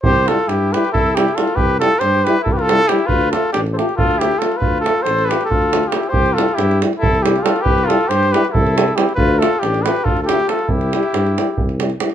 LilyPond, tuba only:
\new Staff \with { instrumentName = "Tuba" } { \clef bass \time 7/8 \key c \major \tempo 4 = 138 c,4 g,4 c,4. | c,4 g,4 c,4. | d,4 a,,4 d,4. | d,4 a,,4 d,4. |
c,4 g,4 c,4. | c,4 g,4 c,4. | d,4 a,,4 d,4. | c,4 g,4 c,4. | }